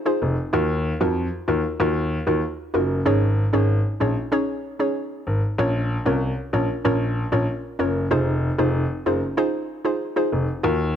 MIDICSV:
0, 0, Header, 1, 3, 480
1, 0, Start_track
1, 0, Tempo, 631579
1, 406, Time_signature, 4, 2, 24, 8
1, 8330, End_track
2, 0, Start_track
2, 0, Title_t, "Synth pluck"
2, 0, Program_c, 0, 84
2, 43, Note_on_c, 0, 63, 80
2, 44, Note_on_c, 0, 65, 74
2, 46, Note_on_c, 0, 68, 74
2, 47, Note_on_c, 0, 72, 88
2, 141, Note_off_c, 0, 63, 0
2, 141, Note_off_c, 0, 65, 0
2, 142, Note_off_c, 0, 68, 0
2, 142, Note_off_c, 0, 72, 0
2, 402, Note_on_c, 0, 63, 93
2, 404, Note_on_c, 0, 65, 85
2, 405, Note_on_c, 0, 66, 87
2, 406, Note_on_c, 0, 70, 103
2, 500, Note_off_c, 0, 63, 0
2, 501, Note_off_c, 0, 65, 0
2, 502, Note_off_c, 0, 66, 0
2, 502, Note_off_c, 0, 70, 0
2, 765, Note_on_c, 0, 63, 81
2, 765, Note_on_c, 0, 65, 75
2, 766, Note_on_c, 0, 66, 77
2, 769, Note_on_c, 0, 70, 90
2, 1097, Note_off_c, 0, 63, 0
2, 1097, Note_off_c, 0, 65, 0
2, 1097, Note_off_c, 0, 66, 0
2, 1099, Note_off_c, 0, 70, 0
2, 1123, Note_on_c, 0, 63, 78
2, 1125, Note_on_c, 0, 65, 70
2, 1127, Note_on_c, 0, 66, 67
2, 1127, Note_on_c, 0, 70, 87
2, 1345, Note_off_c, 0, 63, 0
2, 1346, Note_off_c, 0, 65, 0
2, 1347, Note_off_c, 0, 66, 0
2, 1347, Note_off_c, 0, 70, 0
2, 1366, Note_on_c, 0, 63, 94
2, 1366, Note_on_c, 0, 65, 90
2, 1368, Note_on_c, 0, 66, 93
2, 1370, Note_on_c, 0, 70, 105
2, 1697, Note_off_c, 0, 63, 0
2, 1697, Note_off_c, 0, 65, 0
2, 1698, Note_off_c, 0, 66, 0
2, 1699, Note_off_c, 0, 70, 0
2, 1723, Note_on_c, 0, 63, 77
2, 1724, Note_on_c, 0, 65, 73
2, 1727, Note_on_c, 0, 66, 71
2, 1728, Note_on_c, 0, 70, 86
2, 2056, Note_off_c, 0, 63, 0
2, 2056, Note_off_c, 0, 65, 0
2, 2058, Note_off_c, 0, 66, 0
2, 2058, Note_off_c, 0, 70, 0
2, 2081, Note_on_c, 0, 63, 77
2, 2083, Note_on_c, 0, 65, 74
2, 2085, Note_on_c, 0, 66, 72
2, 2086, Note_on_c, 0, 70, 85
2, 2304, Note_off_c, 0, 63, 0
2, 2305, Note_off_c, 0, 65, 0
2, 2306, Note_off_c, 0, 66, 0
2, 2307, Note_off_c, 0, 70, 0
2, 2322, Note_on_c, 0, 61, 95
2, 2322, Note_on_c, 0, 63, 81
2, 2324, Note_on_c, 0, 68, 84
2, 2326, Note_on_c, 0, 73, 99
2, 2420, Note_off_c, 0, 61, 0
2, 2420, Note_off_c, 0, 63, 0
2, 2421, Note_off_c, 0, 68, 0
2, 2422, Note_off_c, 0, 73, 0
2, 2682, Note_on_c, 0, 61, 79
2, 2684, Note_on_c, 0, 63, 75
2, 2686, Note_on_c, 0, 68, 75
2, 2687, Note_on_c, 0, 73, 88
2, 3015, Note_off_c, 0, 61, 0
2, 3016, Note_off_c, 0, 63, 0
2, 3017, Note_off_c, 0, 68, 0
2, 3018, Note_off_c, 0, 73, 0
2, 3042, Note_on_c, 0, 61, 73
2, 3044, Note_on_c, 0, 63, 70
2, 3046, Note_on_c, 0, 68, 68
2, 3047, Note_on_c, 0, 73, 83
2, 3265, Note_off_c, 0, 61, 0
2, 3266, Note_off_c, 0, 63, 0
2, 3267, Note_off_c, 0, 68, 0
2, 3267, Note_off_c, 0, 73, 0
2, 3281, Note_on_c, 0, 61, 98
2, 3284, Note_on_c, 0, 63, 87
2, 3284, Note_on_c, 0, 68, 90
2, 3287, Note_on_c, 0, 73, 108
2, 3615, Note_off_c, 0, 61, 0
2, 3616, Note_off_c, 0, 63, 0
2, 3616, Note_off_c, 0, 68, 0
2, 3618, Note_off_c, 0, 73, 0
2, 3644, Note_on_c, 0, 61, 77
2, 3645, Note_on_c, 0, 63, 73
2, 3647, Note_on_c, 0, 68, 69
2, 3648, Note_on_c, 0, 73, 82
2, 3741, Note_off_c, 0, 61, 0
2, 3742, Note_off_c, 0, 63, 0
2, 3743, Note_off_c, 0, 68, 0
2, 3743, Note_off_c, 0, 73, 0
2, 4245, Note_on_c, 0, 61, 92
2, 4246, Note_on_c, 0, 65, 84
2, 4248, Note_on_c, 0, 70, 86
2, 4249, Note_on_c, 0, 73, 103
2, 4342, Note_off_c, 0, 61, 0
2, 4342, Note_off_c, 0, 65, 0
2, 4343, Note_off_c, 0, 70, 0
2, 4344, Note_off_c, 0, 73, 0
2, 4602, Note_on_c, 0, 61, 80
2, 4604, Note_on_c, 0, 65, 74
2, 4605, Note_on_c, 0, 70, 72
2, 4606, Note_on_c, 0, 73, 86
2, 4935, Note_off_c, 0, 61, 0
2, 4936, Note_off_c, 0, 65, 0
2, 4937, Note_off_c, 0, 70, 0
2, 4937, Note_off_c, 0, 73, 0
2, 4963, Note_on_c, 0, 61, 76
2, 4964, Note_on_c, 0, 65, 70
2, 4966, Note_on_c, 0, 70, 68
2, 4967, Note_on_c, 0, 73, 83
2, 5185, Note_off_c, 0, 61, 0
2, 5186, Note_off_c, 0, 65, 0
2, 5187, Note_off_c, 0, 70, 0
2, 5187, Note_off_c, 0, 73, 0
2, 5203, Note_on_c, 0, 61, 93
2, 5204, Note_on_c, 0, 65, 86
2, 5205, Note_on_c, 0, 70, 91
2, 5207, Note_on_c, 0, 73, 105
2, 5536, Note_off_c, 0, 61, 0
2, 5536, Note_off_c, 0, 65, 0
2, 5537, Note_off_c, 0, 70, 0
2, 5538, Note_off_c, 0, 73, 0
2, 5563, Note_on_c, 0, 61, 80
2, 5564, Note_on_c, 0, 65, 70
2, 5566, Note_on_c, 0, 70, 69
2, 5567, Note_on_c, 0, 73, 87
2, 5895, Note_off_c, 0, 61, 0
2, 5896, Note_off_c, 0, 65, 0
2, 5897, Note_off_c, 0, 70, 0
2, 5898, Note_off_c, 0, 73, 0
2, 5921, Note_on_c, 0, 61, 80
2, 5922, Note_on_c, 0, 65, 70
2, 5924, Note_on_c, 0, 70, 70
2, 5925, Note_on_c, 0, 73, 85
2, 6144, Note_off_c, 0, 61, 0
2, 6145, Note_off_c, 0, 65, 0
2, 6146, Note_off_c, 0, 70, 0
2, 6146, Note_off_c, 0, 73, 0
2, 6162, Note_on_c, 0, 63, 92
2, 6163, Note_on_c, 0, 65, 86
2, 6164, Note_on_c, 0, 68, 84
2, 6165, Note_on_c, 0, 72, 104
2, 6260, Note_off_c, 0, 63, 0
2, 6260, Note_off_c, 0, 65, 0
2, 6261, Note_off_c, 0, 68, 0
2, 6262, Note_off_c, 0, 72, 0
2, 6523, Note_on_c, 0, 63, 77
2, 6526, Note_on_c, 0, 65, 74
2, 6527, Note_on_c, 0, 68, 74
2, 6529, Note_on_c, 0, 72, 88
2, 6856, Note_off_c, 0, 63, 0
2, 6857, Note_off_c, 0, 65, 0
2, 6857, Note_off_c, 0, 68, 0
2, 6858, Note_off_c, 0, 72, 0
2, 6886, Note_on_c, 0, 63, 75
2, 6886, Note_on_c, 0, 65, 73
2, 6888, Note_on_c, 0, 68, 72
2, 6891, Note_on_c, 0, 72, 83
2, 7107, Note_off_c, 0, 63, 0
2, 7107, Note_off_c, 0, 65, 0
2, 7108, Note_off_c, 0, 68, 0
2, 7109, Note_off_c, 0, 72, 0
2, 7123, Note_on_c, 0, 63, 99
2, 7124, Note_on_c, 0, 65, 88
2, 7126, Note_on_c, 0, 68, 90
2, 7128, Note_on_c, 0, 72, 107
2, 7456, Note_off_c, 0, 63, 0
2, 7456, Note_off_c, 0, 65, 0
2, 7457, Note_off_c, 0, 68, 0
2, 7458, Note_off_c, 0, 72, 0
2, 7483, Note_on_c, 0, 63, 80
2, 7484, Note_on_c, 0, 65, 69
2, 7487, Note_on_c, 0, 68, 69
2, 7489, Note_on_c, 0, 72, 87
2, 7581, Note_off_c, 0, 63, 0
2, 7581, Note_off_c, 0, 65, 0
2, 7583, Note_off_c, 0, 68, 0
2, 7584, Note_off_c, 0, 72, 0
2, 7723, Note_on_c, 0, 63, 79
2, 7724, Note_on_c, 0, 65, 73
2, 7727, Note_on_c, 0, 68, 75
2, 7727, Note_on_c, 0, 72, 90
2, 7821, Note_off_c, 0, 63, 0
2, 7821, Note_off_c, 0, 65, 0
2, 7823, Note_off_c, 0, 68, 0
2, 7823, Note_off_c, 0, 72, 0
2, 8082, Note_on_c, 0, 63, 91
2, 8083, Note_on_c, 0, 65, 82
2, 8085, Note_on_c, 0, 66, 83
2, 8086, Note_on_c, 0, 70, 108
2, 8180, Note_off_c, 0, 63, 0
2, 8181, Note_off_c, 0, 65, 0
2, 8182, Note_off_c, 0, 66, 0
2, 8182, Note_off_c, 0, 70, 0
2, 8330, End_track
3, 0, Start_track
3, 0, Title_t, "Grand piano"
3, 0, Program_c, 1, 0
3, 167, Note_on_c, 1, 29, 95
3, 259, Note_off_c, 1, 29, 0
3, 407, Note_on_c, 1, 39, 108
3, 685, Note_off_c, 1, 39, 0
3, 766, Note_on_c, 1, 41, 91
3, 952, Note_off_c, 1, 41, 0
3, 1125, Note_on_c, 1, 39, 94
3, 1218, Note_off_c, 1, 39, 0
3, 1366, Note_on_c, 1, 39, 101
3, 1644, Note_off_c, 1, 39, 0
3, 1725, Note_on_c, 1, 39, 89
3, 1818, Note_off_c, 1, 39, 0
3, 2085, Note_on_c, 1, 30, 93
3, 2271, Note_off_c, 1, 30, 0
3, 2325, Note_on_c, 1, 32, 109
3, 2604, Note_off_c, 1, 32, 0
3, 2685, Note_on_c, 1, 32, 109
3, 2871, Note_off_c, 1, 32, 0
3, 3045, Note_on_c, 1, 34, 93
3, 3138, Note_off_c, 1, 34, 0
3, 4004, Note_on_c, 1, 32, 96
3, 4097, Note_off_c, 1, 32, 0
3, 4244, Note_on_c, 1, 34, 109
3, 4523, Note_off_c, 1, 34, 0
3, 4605, Note_on_c, 1, 36, 99
3, 4791, Note_off_c, 1, 36, 0
3, 4964, Note_on_c, 1, 34, 91
3, 5057, Note_off_c, 1, 34, 0
3, 5205, Note_on_c, 1, 34, 104
3, 5484, Note_off_c, 1, 34, 0
3, 5565, Note_on_c, 1, 34, 96
3, 5658, Note_off_c, 1, 34, 0
3, 5924, Note_on_c, 1, 30, 95
3, 6110, Note_off_c, 1, 30, 0
3, 6165, Note_on_c, 1, 29, 111
3, 6444, Note_off_c, 1, 29, 0
3, 6525, Note_on_c, 1, 29, 115
3, 6711, Note_off_c, 1, 29, 0
3, 6887, Note_on_c, 1, 30, 89
3, 6979, Note_off_c, 1, 30, 0
3, 7847, Note_on_c, 1, 29, 94
3, 7939, Note_off_c, 1, 29, 0
3, 8087, Note_on_c, 1, 39, 110
3, 8330, Note_off_c, 1, 39, 0
3, 8330, End_track
0, 0, End_of_file